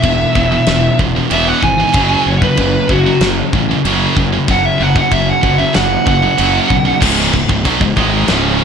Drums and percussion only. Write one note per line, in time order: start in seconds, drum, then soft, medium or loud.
0.03 kick loud
0.03 crash medium
0.35 kick loud
0.66 snare loud
0.66 crash medium
0.99 kick medium
1.31 crash medium
1.63 kick medium
1.94 kick loud
1.94 crash medium
2.42 kick medium
2.57 kick medium
2.57 crash medium
2.89 kick medium
3.21 snare loud
3.21 crash medium
3.53 kick loud
3.85 crash medium
4.17 kick medium
4.48 kick loud
4.48 crash medium
4.96 kick medium
5.12 kick medium
5.12 crash medium
5.43 kick medium
5.74 snare loud
5.74 crash medium
6.07 kick loud
6.38 crash medium
6.70 kick medium
7.02 kick loud
7.02 crash loud
7.02 crash medium
7.34 kick medium
7.49 kick medium
7.65 kick loud
7.65 crash medium
7.81 kick loud
7.97 kick medium
8.28 snare loud
8.28 crash medium